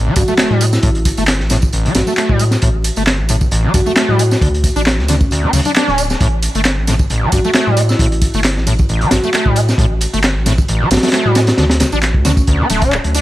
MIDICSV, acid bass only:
0, 0, Header, 1, 2, 480
1, 0, Start_track
1, 0, Tempo, 447761
1, 893, Time_signature, 4, 2, 24, 8
1, 14164, End_track
2, 0, Start_track
2, 0, Title_t, "Acid bass"
2, 0, Program_c, 0, 38
2, 66, Note_on_c, 0, 57, 101
2, 155, Note_off_c, 0, 57, 0
2, 176, Note_on_c, 0, 43, 81
2, 246, Note_off_c, 0, 43, 0
2, 301, Note_on_c, 0, 57, 100
2, 362, Note_off_c, 0, 57, 0
2, 417, Note_on_c, 0, 57, 81
2, 548, Note_on_c, 0, 55, 75
2, 564, Note_off_c, 0, 57, 0
2, 658, Note_on_c, 0, 57, 101
2, 674, Note_off_c, 0, 55, 0
2, 698, Note_off_c, 0, 57, 0
2, 895, Note_on_c, 0, 45, 81
2, 965, Note_off_c, 0, 45, 0
2, 1264, Note_on_c, 0, 57, 98
2, 1324, Note_off_c, 0, 57, 0
2, 1615, Note_on_c, 0, 45, 76
2, 1685, Note_off_c, 0, 45, 0
2, 1856, Note_on_c, 0, 33, 84
2, 1980, Note_on_c, 0, 57, 104
2, 1996, Note_off_c, 0, 33, 0
2, 2072, Note_off_c, 0, 57, 0
2, 2099, Note_on_c, 0, 43, 78
2, 2167, Note_off_c, 0, 43, 0
2, 2225, Note_on_c, 0, 57, 96
2, 2284, Note_off_c, 0, 57, 0
2, 2336, Note_on_c, 0, 57, 84
2, 2464, Note_on_c, 0, 55, 76
2, 2480, Note_off_c, 0, 57, 0
2, 2570, Note_on_c, 0, 57, 105
2, 2586, Note_off_c, 0, 55, 0
2, 2614, Note_off_c, 0, 57, 0
2, 2814, Note_on_c, 0, 45, 81
2, 2884, Note_off_c, 0, 45, 0
2, 3184, Note_on_c, 0, 57, 99
2, 3244, Note_off_c, 0, 57, 0
2, 3532, Note_on_c, 0, 45, 77
2, 3604, Note_off_c, 0, 45, 0
2, 3772, Note_on_c, 0, 33, 86
2, 3901, Note_on_c, 0, 57, 97
2, 3917, Note_off_c, 0, 33, 0
2, 3993, Note_off_c, 0, 57, 0
2, 4012, Note_on_c, 0, 43, 78
2, 4084, Note_off_c, 0, 43, 0
2, 4143, Note_on_c, 0, 57, 97
2, 4203, Note_off_c, 0, 57, 0
2, 4253, Note_on_c, 0, 57, 83
2, 4384, Note_on_c, 0, 55, 78
2, 4400, Note_off_c, 0, 57, 0
2, 4493, Note_on_c, 0, 57, 104
2, 4509, Note_off_c, 0, 55, 0
2, 4535, Note_off_c, 0, 57, 0
2, 4734, Note_on_c, 0, 50, 83
2, 4804, Note_off_c, 0, 50, 0
2, 5102, Note_on_c, 0, 62, 96
2, 5163, Note_off_c, 0, 62, 0
2, 5457, Note_on_c, 0, 50, 78
2, 5526, Note_off_c, 0, 50, 0
2, 5697, Note_on_c, 0, 38, 83
2, 5824, Note_on_c, 0, 62, 106
2, 5840, Note_off_c, 0, 38, 0
2, 5914, Note_off_c, 0, 62, 0
2, 5940, Note_on_c, 0, 49, 76
2, 6007, Note_off_c, 0, 49, 0
2, 6066, Note_on_c, 0, 62, 100
2, 6125, Note_off_c, 0, 62, 0
2, 6181, Note_on_c, 0, 62, 82
2, 6308, Note_on_c, 0, 61, 75
2, 6324, Note_off_c, 0, 62, 0
2, 6418, Note_on_c, 0, 62, 100
2, 6434, Note_off_c, 0, 61, 0
2, 6458, Note_off_c, 0, 62, 0
2, 6659, Note_on_c, 0, 45, 85
2, 6727, Note_off_c, 0, 45, 0
2, 7026, Note_on_c, 0, 57, 100
2, 7085, Note_off_c, 0, 57, 0
2, 7380, Note_on_c, 0, 45, 76
2, 7447, Note_off_c, 0, 45, 0
2, 7620, Note_on_c, 0, 33, 83
2, 7751, Note_on_c, 0, 57, 102
2, 7767, Note_off_c, 0, 33, 0
2, 7838, Note_off_c, 0, 57, 0
2, 7860, Note_on_c, 0, 43, 79
2, 7927, Note_off_c, 0, 43, 0
2, 7986, Note_on_c, 0, 57, 101
2, 8045, Note_off_c, 0, 57, 0
2, 8100, Note_on_c, 0, 57, 85
2, 8231, Note_on_c, 0, 55, 72
2, 8247, Note_off_c, 0, 57, 0
2, 8337, Note_on_c, 0, 57, 106
2, 8354, Note_off_c, 0, 55, 0
2, 8378, Note_off_c, 0, 57, 0
2, 8582, Note_on_c, 0, 45, 82
2, 8648, Note_off_c, 0, 45, 0
2, 8949, Note_on_c, 0, 57, 102
2, 9006, Note_off_c, 0, 57, 0
2, 9296, Note_on_c, 0, 45, 81
2, 9366, Note_off_c, 0, 45, 0
2, 9533, Note_on_c, 0, 33, 87
2, 9667, Note_on_c, 0, 57, 102
2, 9683, Note_off_c, 0, 33, 0
2, 9756, Note_off_c, 0, 57, 0
2, 9776, Note_on_c, 0, 43, 76
2, 9846, Note_off_c, 0, 43, 0
2, 9905, Note_on_c, 0, 57, 98
2, 9964, Note_off_c, 0, 57, 0
2, 10018, Note_on_c, 0, 57, 82
2, 10144, Note_on_c, 0, 55, 75
2, 10160, Note_off_c, 0, 57, 0
2, 10253, Note_on_c, 0, 57, 99
2, 10270, Note_off_c, 0, 55, 0
2, 10296, Note_off_c, 0, 57, 0
2, 10494, Note_on_c, 0, 45, 84
2, 10564, Note_off_c, 0, 45, 0
2, 10864, Note_on_c, 0, 57, 96
2, 10924, Note_off_c, 0, 57, 0
2, 11216, Note_on_c, 0, 45, 79
2, 11285, Note_off_c, 0, 45, 0
2, 11456, Note_on_c, 0, 33, 88
2, 11585, Note_on_c, 0, 57, 99
2, 11601, Note_off_c, 0, 33, 0
2, 11675, Note_off_c, 0, 57, 0
2, 11698, Note_on_c, 0, 43, 76
2, 11766, Note_off_c, 0, 43, 0
2, 11828, Note_on_c, 0, 57, 99
2, 11886, Note_off_c, 0, 57, 0
2, 11940, Note_on_c, 0, 57, 85
2, 12068, Note_on_c, 0, 55, 75
2, 12084, Note_off_c, 0, 57, 0
2, 12177, Note_on_c, 0, 57, 103
2, 12193, Note_off_c, 0, 55, 0
2, 12218, Note_off_c, 0, 57, 0
2, 12416, Note_on_c, 0, 50, 82
2, 12485, Note_off_c, 0, 50, 0
2, 12785, Note_on_c, 0, 62, 101
2, 12844, Note_off_c, 0, 62, 0
2, 13136, Note_on_c, 0, 50, 81
2, 13205, Note_off_c, 0, 50, 0
2, 13379, Note_on_c, 0, 38, 83
2, 13505, Note_on_c, 0, 62, 101
2, 13521, Note_off_c, 0, 38, 0
2, 13595, Note_off_c, 0, 62, 0
2, 13617, Note_on_c, 0, 57, 105
2, 13750, Note_on_c, 0, 62, 75
2, 13766, Note_off_c, 0, 57, 0
2, 13862, Note_on_c, 0, 50, 86
2, 13878, Note_off_c, 0, 62, 0
2, 13900, Note_off_c, 0, 50, 0
2, 14099, Note_on_c, 0, 62, 102
2, 14164, Note_off_c, 0, 62, 0
2, 14164, End_track
0, 0, End_of_file